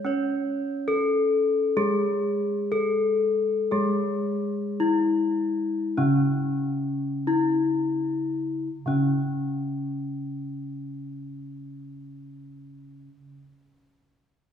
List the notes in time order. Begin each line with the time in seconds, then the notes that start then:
0.05 C#4 C#5
0.88 A4
1.77 G#3 G#4
2.72 A4
3.71 G#3 G#4
4.80 E4
5.97 C#3 C#4
7.27 E4
8.86 C#3 C#4